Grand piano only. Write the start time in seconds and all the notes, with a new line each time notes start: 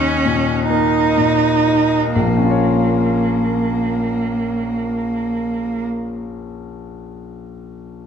Already playing: D#2 D#4
0.25 A#2
0.70 A#3
1.17 A#2
1.67 D#4
2.16 A#1
2.23 A#2
2.30 A#3
2.37 C#4
2.44 F4
2.51 C#5